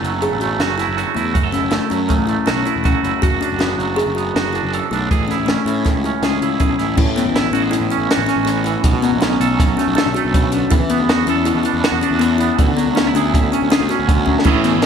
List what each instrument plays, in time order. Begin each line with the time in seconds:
Already playing: clean electric guitar F#2 A3 E4 A4, kalimba E4
0.02 picked electric bass F#1, clean electric guitar F#3, closed hi-hat
0.22 clean electric guitar C#3, kalimba G#4, closed hi-hat
0.32 picked electric bass A1
0.41 clean electric guitar A3, kalimba F#4, closed hi-hat
0.59 picked electric bass F#1, clean electric guitar F#4, snare, closed hi-hat
0.78 kalimba E4, clean electric guitar E4, snare, closed hi-hat
0.87 picked electric bass F#1
0.96 clean electric guitar F#2 F#4, closed hi-hat
1.15 picked electric bass E2, kalimba A3, clean electric guitar E4, closed hi-hat
1.33 picked electric bass F#1, clean electric guitar F#2 F#4, kick, closed hi-hat
1.43 clean electric guitar A4
1.52 kalimba C#4, clean electric guitar E4, snare, closed hi-hat
1.63 picked electric bass F#1
1.71 kalimba A3, clean electric guitar A3, snare, closed hi-hat
1.90 picked electric bass F#2, clean electric guitar F#3, kalimba C#4, closed hi-hat
2.09 clean electric guitar C#3, kalimba A3, kick, closed hi-hat
2.19 picked electric bass A1
2.27 clean electric guitar A3, kalimba E4, closed hi-hat
2.46 picked electric bass B1, kalimba C#4, clean electric guitar F#4, snare, closed hi-hat
2.66 kalimba E4, clean electric guitar E4, closed hi-hat
2.76 picked electric bass E1
2.84 clean electric guitar F#2 F#4, kalimba C#4, kick, closed hi-hat
3.03 picked electric bass F#1, clean electric guitar E4, closed hi-hat
3.22 picked electric bass F#1, clean electric guitar F#2 F#4, kalimba F#4, kick, closed hi-hat
3.41 kalimba D4, clean electric guitar D4, closed hi-hat
3.50 picked electric bass F#1
3.59 clean electric guitar B3, kalimba F#4, snare, closed hi-hat
3.78 picked electric bass F#1, clean electric guitar F#3, closed hi-hat
3.96 clean electric guitar F#2, kalimba G#4, closed hi-hat
4.07 picked electric bass F#1
4.15 clean electric guitar B3, kalimba F#4, closed hi-hat
4.35 picked electric bass F#1, clean electric guitar F#4, snare, closed hi-hat
4.53 clean electric guitar D4, kalimba E4, closed hi-hat
4.63 picked electric bass F#1
4.73 clean electric guitar F#2 A4, closed hi-hat
4.91 picked electric bass B1, kalimba A3, clean electric guitar D4, closed hi-hat
5.11 picked electric bass A1, clean electric guitar A2 G#4, kick, closed hi-hat
5.28 kalimba C#4, clean electric guitar E4, snare, closed hi-hat
5.38 picked electric bass A1
5.46 kalimba A3, clean electric guitar C#4, snare, closed hi-hat
5.66 picked electric bass A2, clean electric guitar E3, kalimba C#4, closed hi-hat
5.85 clean electric guitar A2, kalimba A3, kick, snare, closed hi-hat
5.95 picked electric bass C#2
6.04 clean electric guitar C#4, kalimba E4, closed hi-hat
6.22 picked electric bass C#2, kalimba C#4, clean electric guitar G#4, snare, closed hi-hat
6.42 picked electric bass C#2, kalimba E4, clean electric guitar E4, closed hi-hat
6.60 picked electric bass B1, clean electric guitar A2 G#4, kalimba C#4, kick, closed hi-hat
6.78 picked electric bass A1, clean electric guitar E4, snare, closed hi-hat
6.96 picked electric bass A1, clean electric guitar A2, kalimba E4, kick, crash
7.05 picked electric bass A2
7.16 clean electric guitar E3, kalimba B3, snare, closed hi-hat
7.24 picked electric bass A1
7.35 clean electric guitar E4, snare, closed hi-hat
7.52 picked electric bass A1, kalimba C#4, clean electric guitar F#4, closed hi-hat
7.63 clean electric guitar G#4
7.71 clean electric guitar A2, kalimba E4, closed hi-hat
7.80 picked electric bass A1
7.90 clean electric guitar C#4, kalimba E4, closed hi-hat
7.99 picked electric bass A1
8.11 clean electric guitar F#4, snare, closed hi-hat
8.17 picked electric bass A1
8.26 kalimba C#4, clean electric guitar C#4, snare, closed hi-hat
8.36 picked electric bass A1
8.45 clean electric guitar A2, kalimba A3, snare, closed hi-hat
8.64 clean electric guitar E3, kalimba E4, closed hi-hat
8.84 picked electric bass B1, clean electric guitar B2, kick, closed hi-hat
8.93 picked electric bass B2
9.02 clean electric guitar F#3, kalimba B3, closed hi-hat
9.12 picked electric bass B1
9.21 kalimba C#4, clean electric guitar C#4, snare, closed hi-hat
9.40 picked electric bass B1, clean electric guitar A4, closed hi-hat
9.58 clean electric guitar F#2, kick, snare, closed hi-hat
9.67 picked electric bass B1
9.77 clean electric guitar A3, kalimba C#4, snare, closed hi-hat
9.88 picked electric bass B1
9.95 kalimba D4, clean electric guitar A4, snare, closed hi-hat
10.06 picked electric bass B1
10.14 clean electric guitar A3, kalimba F#4, closed hi-hat
10.25 picked electric bass B1
10.34 clean electric guitar C#3, kick, closed hi-hat
10.52 clean electric guitar D3, kalimba C#4, closed hi-hat
10.71 picked electric bass E2, clean electric guitar E3, kalimba E4, kick, closed hi-hat
10.80 picked electric bass E3
10.90 kalimba B3, clean electric guitar B3, closed hi-hat
10.99 picked electric bass E2
11.09 clean electric guitar F#4, snare, closed hi-hat
11.26 picked electric bass E2, kalimba C#4, clean electric guitar A4, closed hi-hat
11.45 clean electric guitar B2, kalimba E4, closed hi-hat
11.55 picked electric bass E2
11.63 clean electric guitar D4, kalimba E4, closed hi-hat
11.74 picked electric bass E2
11.84 clean electric guitar F#4, snare, closed hi-hat
11.92 picked electric bass E2
12.01 kalimba C#4, clean electric guitar D4, closed hi-hat
12.11 picked electric bass E2
12.19 clean electric guitar E3, kalimba B3, closed hi-hat
12.38 clean electric guitar B3, kalimba E4, closed hi-hat
12.58 picked electric bass D2, clean electric guitar D3, kick, closed hi-hat
12.68 picked electric bass D3
12.76 clean electric guitar F#3, kalimba B3, closed hi-hat
12.87 picked electric bass D2
12.95 kalimba C#4, clean electric guitar C#4, snare, closed hi-hat
13.07 clean electric guitar E4
13.14 picked electric bass D2, kalimba D4, clean electric guitar G#4, closed hi-hat
13.34 clean electric guitar A2, kick, closed hi-hat
13.42 picked electric bass D2
13.52 kalimba C#4, clean electric guitar C#4, closed hi-hat
13.62 picked electric bass D2
13.70 kalimba D4, clean electric guitar G#4, snare, closed hi-hat
13.80 picked electric bass D2
13.89 clean electric guitar C#4, kalimba F#4, snare, closed hi-hat
13.99 picked electric bass D2
14.08 clean electric guitar D3, kick, closed hi-hat
14.26 clean electric guitar F#3, kalimba C#4, kick
14.39 snare
14.44 picked electric bass A1, clean electric guitar A2 E3 C#4 E4 G#4, overdriven electric guitar A3, kalimba E4, kick, closed hi-hat
14.55 picked electric bass A2
14.64 clean electric guitar E3, kalimba B3, snare, closed hi-hat
14.74 picked electric bass A1
14.82 snare, closed hi-hat